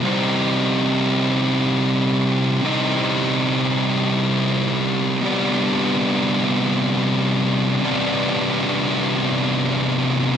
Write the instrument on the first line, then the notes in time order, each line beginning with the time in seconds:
distorted electric guitar
0.03 C3 G3 C4 D#4
2.62 C3 G3 C4 D#4
5.22 C3 G3 B3 D4
7.82 C3 G3 B3 D4